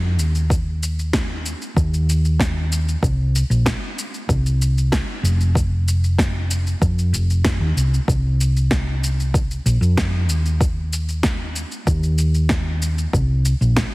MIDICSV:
0, 0, Header, 1, 3, 480
1, 0, Start_track
1, 0, Tempo, 631579
1, 382, Time_signature, 4, 2, 24, 8
1, 10598, End_track
2, 0, Start_track
2, 0, Title_t, "Fingered electric bass"
2, 0, Program_c, 0, 33
2, 0, Note_on_c, 0, 41, 90
2, 143, Note_off_c, 0, 41, 0
2, 143, Note_on_c, 0, 39, 78
2, 1160, Note_off_c, 0, 39, 0
2, 1340, Note_on_c, 0, 39, 84
2, 2239, Note_off_c, 0, 39, 0
2, 2299, Note_on_c, 0, 36, 91
2, 2598, Note_off_c, 0, 36, 0
2, 2660, Note_on_c, 0, 34, 78
2, 2822, Note_off_c, 0, 34, 0
2, 3259, Note_on_c, 0, 36, 87
2, 3798, Note_off_c, 0, 36, 0
2, 3975, Note_on_c, 0, 29, 81
2, 5116, Note_off_c, 0, 29, 0
2, 5180, Note_on_c, 0, 41, 81
2, 5418, Note_on_c, 0, 29, 85
2, 5429, Note_off_c, 0, 41, 0
2, 5773, Note_off_c, 0, 29, 0
2, 5778, Note_on_c, 0, 39, 81
2, 5861, Note_off_c, 0, 39, 0
2, 5900, Note_on_c, 0, 36, 78
2, 6063, Note_off_c, 0, 36, 0
2, 6139, Note_on_c, 0, 36, 95
2, 7278, Note_off_c, 0, 36, 0
2, 7339, Note_on_c, 0, 34, 82
2, 7422, Note_off_c, 0, 34, 0
2, 7454, Note_on_c, 0, 41, 87
2, 7816, Note_off_c, 0, 41, 0
2, 7816, Note_on_c, 0, 39, 78
2, 8837, Note_off_c, 0, 39, 0
2, 9020, Note_on_c, 0, 39, 88
2, 9919, Note_off_c, 0, 39, 0
2, 9982, Note_on_c, 0, 36, 89
2, 10279, Note_off_c, 0, 36, 0
2, 10342, Note_on_c, 0, 34, 80
2, 10504, Note_off_c, 0, 34, 0
2, 10598, End_track
3, 0, Start_track
3, 0, Title_t, "Drums"
3, 145, Note_on_c, 9, 82, 69
3, 221, Note_off_c, 9, 82, 0
3, 267, Note_on_c, 9, 82, 34
3, 343, Note_off_c, 9, 82, 0
3, 381, Note_on_c, 9, 36, 103
3, 390, Note_on_c, 9, 82, 45
3, 457, Note_off_c, 9, 36, 0
3, 466, Note_off_c, 9, 82, 0
3, 630, Note_on_c, 9, 82, 78
3, 706, Note_off_c, 9, 82, 0
3, 753, Note_on_c, 9, 82, 32
3, 829, Note_off_c, 9, 82, 0
3, 861, Note_on_c, 9, 36, 101
3, 862, Note_on_c, 9, 38, 97
3, 868, Note_on_c, 9, 82, 43
3, 937, Note_off_c, 9, 36, 0
3, 938, Note_off_c, 9, 38, 0
3, 944, Note_off_c, 9, 82, 0
3, 1108, Note_on_c, 9, 82, 77
3, 1184, Note_off_c, 9, 82, 0
3, 1229, Note_on_c, 9, 82, 33
3, 1305, Note_off_c, 9, 82, 0
3, 1342, Note_on_c, 9, 36, 93
3, 1348, Note_on_c, 9, 82, 42
3, 1418, Note_off_c, 9, 36, 0
3, 1424, Note_off_c, 9, 82, 0
3, 1473, Note_on_c, 9, 82, 32
3, 1549, Note_off_c, 9, 82, 0
3, 1592, Note_on_c, 9, 82, 69
3, 1668, Note_off_c, 9, 82, 0
3, 1709, Note_on_c, 9, 82, 31
3, 1785, Note_off_c, 9, 82, 0
3, 1821, Note_on_c, 9, 36, 104
3, 1828, Note_on_c, 9, 38, 95
3, 1835, Note_on_c, 9, 82, 41
3, 1897, Note_off_c, 9, 36, 0
3, 1904, Note_off_c, 9, 38, 0
3, 1911, Note_off_c, 9, 82, 0
3, 2069, Note_on_c, 9, 82, 77
3, 2145, Note_off_c, 9, 82, 0
3, 2192, Note_on_c, 9, 82, 34
3, 2268, Note_off_c, 9, 82, 0
3, 2300, Note_on_c, 9, 36, 103
3, 2311, Note_on_c, 9, 82, 45
3, 2376, Note_off_c, 9, 36, 0
3, 2387, Note_off_c, 9, 82, 0
3, 2550, Note_on_c, 9, 82, 75
3, 2626, Note_off_c, 9, 82, 0
3, 2668, Note_on_c, 9, 82, 32
3, 2744, Note_off_c, 9, 82, 0
3, 2780, Note_on_c, 9, 36, 101
3, 2784, Note_on_c, 9, 38, 90
3, 2791, Note_on_c, 9, 82, 44
3, 2856, Note_off_c, 9, 36, 0
3, 2860, Note_off_c, 9, 38, 0
3, 2867, Note_off_c, 9, 82, 0
3, 3030, Note_on_c, 9, 82, 79
3, 3106, Note_off_c, 9, 82, 0
3, 3147, Note_on_c, 9, 82, 33
3, 3223, Note_off_c, 9, 82, 0
3, 3260, Note_on_c, 9, 36, 98
3, 3265, Note_on_c, 9, 82, 42
3, 3336, Note_off_c, 9, 36, 0
3, 3341, Note_off_c, 9, 82, 0
3, 3390, Note_on_c, 9, 82, 32
3, 3466, Note_off_c, 9, 82, 0
3, 3509, Note_on_c, 9, 82, 71
3, 3585, Note_off_c, 9, 82, 0
3, 3632, Note_on_c, 9, 82, 31
3, 3708, Note_off_c, 9, 82, 0
3, 3740, Note_on_c, 9, 36, 106
3, 3742, Note_on_c, 9, 38, 97
3, 3749, Note_on_c, 9, 82, 46
3, 3816, Note_off_c, 9, 36, 0
3, 3818, Note_off_c, 9, 38, 0
3, 3825, Note_off_c, 9, 82, 0
3, 3990, Note_on_c, 9, 82, 82
3, 4066, Note_off_c, 9, 82, 0
3, 4109, Note_on_c, 9, 82, 34
3, 4185, Note_off_c, 9, 82, 0
3, 4220, Note_on_c, 9, 36, 104
3, 4231, Note_on_c, 9, 82, 46
3, 4296, Note_off_c, 9, 36, 0
3, 4307, Note_off_c, 9, 82, 0
3, 4470, Note_on_c, 9, 82, 77
3, 4546, Note_off_c, 9, 82, 0
3, 4590, Note_on_c, 9, 82, 30
3, 4666, Note_off_c, 9, 82, 0
3, 4700, Note_on_c, 9, 36, 102
3, 4705, Note_on_c, 9, 38, 89
3, 4712, Note_on_c, 9, 82, 44
3, 4776, Note_off_c, 9, 36, 0
3, 4781, Note_off_c, 9, 38, 0
3, 4788, Note_off_c, 9, 82, 0
3, 4946, Note_on_c, 9, 82, 82
3, 5022, Note_off_c, 9, 82, 0
3, 5068, Note_on_c, 9, 82, 32
3, 5144, Note_off_c, 9, 82, 0
3, 5180, Note_on_c, 9, 36, 97
3, 5184, Note_on_c, 9, 82, 42
3, 5256, Note_off_c, 9, 36, 0
3, 5260, Note_off_c, 9, 82, 0
3, 5310, Note_on_c, 9, 82, 29
3, 5386, Note_off_c, 9, 82, 0
3, 5427, Note_on_c, 9, 82, 73
3, 5503, Note_off_c, 9, 82, 0
3, 5550, Note_on_c, 9, 82, 32
3, 5626, Note_off_c, 9, 82, 0
3, 5658, Note_on_c, 9, 38, 98
3, 5661, Note_on_c, 9, 36, 107
3, 5665, Note_on_c, 9, 82, 46
3, 5734, Note_off_c, 9, 38, 0
3, 5737, Note_off_c, 9, 36, 0
3, 5741, Note_off_c, 9, 82, 0
3, 5910, Note_on_c, 9, 82, 74
3, 5986, Note_off_c, 9, 82, 0
3, 6035, Note_on_c, 9, 82, 35
3, 6111, Note_off_c, 9, 82, 0
3, 6141, Note_on_c, 9, 36, 105
3, 6152, Note_on_c, 9, 82, 44
3, 6217, Note_off_c, 9, 36, 0
3, 6228, Note_off_c, 9, 82, 0
3, 6390, Note_on_c, 9, 82, 71
3, 6466, Note_off_c, 9, 82, 0
3, 6510, Note_on_c, 9, 82, 32
3, 6586, Note_off_c, 9, 82, 0
3, 6619, Note_on_c, 9, 38, 89
3, 6620, Note_on_c, 9, 36, 104
3, 6625, Note_on_c, 9, 82, 40
3, 6695, Note_off_c, 9, 38, 0
3, 6696, Note_off_c, 9, 36, 0
3, 6701, Note_off_c, 9, 82, 0
3, 6869, Note_on_c, 9, 82, 74
3, 6945, Note_off_c, 9, 82, 0
3, 6992, Note_on_c, 9, 82, 33
3, 7068, Note_off_c, 9, 82, 0
3, 7100, Note_on_c, 9, 36, 101
3, 7104, Note_on_c, 9, 82, 42
3, 7176, Note_off_c, 9, 36, 0
3, 7180, Note_off_c, 9, 82, 0
3, 7227, Note_on_c, 9, 82, 29
3, 7303, Note_off_c, 9, 82, 0
3, 7344, Note_on_c, 9, 82, 67
3, 7420, Note_off_c, 9, 82, 0
3, 7468, Note_on_c, 9, 82, 32
3, 7544, Note_off_c, 9, 82, 0
3, 7580, Note_on_c, 9, 36, 105
3, 7581, Note_on_c, 9, 38, 86
3, 7587, Note_on_c, 9, 82, 41
3, 7656, Note_off_c, 9, 36, 0
3, 7657, Note_off_c, 9, 38, 0
3, 7663, Note_off_c, 9, 82, 0
3, 7824, Note_on_c, 9, 82, 78
3, 7900, Note_off_c, 9, 82, 0
3, 7947, Note_on_c, 9, 82, 32
3, 8023, Note_off_c, 9, 82, 0
3, 8060, Note_on_c, 9, 36, 104
3, 8066, Note_on_c, 9, 82, 43
3, 8136, Note_off_c, 9, 36, 0
3, 8142, Note_off_c, 9, 82, 0
3, 8306, Note_on_c, 9, 82, 74
3, 8382, Note_off_c, 9, 82, 0
3, 8426, Note_on_c, 9, 82, 29
3, 8502, Note_off_c, 9, 82, 0
3, 8537, Note_on_c, 9, 38, 82
3, 8540, Note_on_c, 9, 36, 92
3, 8543, Note_on_c, 9, 82, 39
3, 8613, Note_off_c, 9, 38, 0
3, 8616, Note_off_c, 9, 36, 0
3, 8619, Note_off_c, 9, 82, 0
3, 8784, Note_on_c, 9, 82, 70
3, 8860, Note_off_c, 9, 82, 0
3, 8904, Note_on_c, 9, 82, 32
3, 8980, Note_off_c, 9, 82, 0
3, 9020, Note_on_c, 9, 36, 92
3, 9023, Note_on_c, 9, 82, 42
3, 9096, Note_off_c, 9, 36, 0
3, 9099, Note_off_c, 9, 82, 0
3, 9145, Note_on_c, 9, 82, 27
3, 9221, Note_off_c, 9, 82, 0
3, 9259, Note_on_c, 9, 82, 63
3, 9335, Note_off_c, 9, 82, 0
3, 9382, Note_on_c, 9, 82, 32
3, 9458, Note_off_c, 9, 82, 0
3, 9494, Note_on_c, 9, 38, 89
3, 9500, Note_on_c, 9, 82, 42
3, 9501, Note_on_c, 9, 36, 100
3, 9570, Note_off_c, 9, 38, 0
3, 9576, Note_off_c, 9, 82, 0
3, 9577, Note_off_c, 9, 36, 0
3, 9744, Note_on_c, 9, 82, 70
3, 9820, Note_off_c, 9, 82, 0
3, 9866, Note_on_c, 9, 82, 34
3, 9942, Note_off_c, 9, 82, 0
3, 9982, Note_on_c, 9, 36, 97
3, 9989, Note_on_c, 9, 82, 41
3, 10058, Note_off_c, 9, 36, 0
3, 10065, Note_off_c, 9, 82, 0
3, 10224, Note_on_c, 9, 82, 73
3, 10300, Note_off_c, 9, 82, 0
3, 10350, Note_on_c, 9, 82, 29
3, 10426, Note_off_c, 9, 82, 0
3, 10461, Note_on_c, 9, 38, 94
3, 10463, Note_on_c, 9, 36, 88
3, 10468, Note_on_c, 9, 82, 40
3, 10537, Note_off_c, 9, 38, 0
3, 10539, Note_off_c, 9, 36, 0
3, 10544, Note_off_c, 9, 82, 0
3, 10598, End_track
0, 0, End_of_file